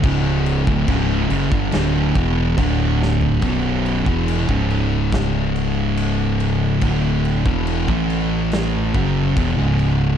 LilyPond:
<<
  \new Staff \with { instrumentName = "Distorted electric guitar" } { \clef bass \time 4/4 \key b \minor \tempo 4 = 71 <cis, gis, cis>8. <d, a,>16 <cis, gis, cis>8 <fis, cis>16 <g, d>16 <d, a, d>8 <e, b, e>8 <d, a, d>4 | <b,, fis, b,>8. <e, b, e>8 <cis, gis, cis>2~ <cis, gis, cis>8. | <d, a, d>8. <e, b, e>8 <a, e a>4~ <a, e a>16 <fis, cis fis>8 <e, b,>16 <cis, gis, cis>8. | }
  \new Staff \with { instrumentName = "Distorted electric guitar" } { \clef bass \time 4/4 \key b \minor <cis, gis, cis>8. <d, a,>16 <cis, gis, cis>8 <fis, cis>16 <g, d>16 <d, a, d>8 <e, b, e>8 <d, a, d>4 | <b,, fis, b,>8. <e, b, e>8 <cis, gis, cis>2~ <cis, gis, cis>8. | <d, a, d>8. <e, b, e>8 <a, e a>4~ <a, e a>16 <fis, cis fis>8 <e, b,>16 <cis, gis, cis>8. | }
  \new Staff \with { instrumentName = "Fingered electric bass" } { \clef bass \time 4/4 \key b \minor cis,,8. d,,16 cis,,8 fis,,16 g,,16 d,,8 e,,8 d,,4 | b,,,8. e,,8 cis,,2~ cis,,8. | d,,8. e,,8 a,,4~ a,,16 fis,,8 e,,16 cis,,8. | }
  \new DrumStaff \with { instrumentName = "Drums" } \drummode { \time 4/4 <cymc bd>8 cymc16 bd16 <cymc bd>8 cymc16 bd16 <cymc sn>8 <cymc bd>8 <cymc bd>8 sn16 tomfh16 | <cymc bd>8 cymc16 bd16 cymc16 bd16 cymc8 <cymc bd sn>8 cymc8 cymc8 cymc8 | <cymc bd>8 cymc16 bd16 cymc16 bd16 cymc8 <cymc sn>8 <cymc bd>8 <cymc bd>8 cymc8 | }
>>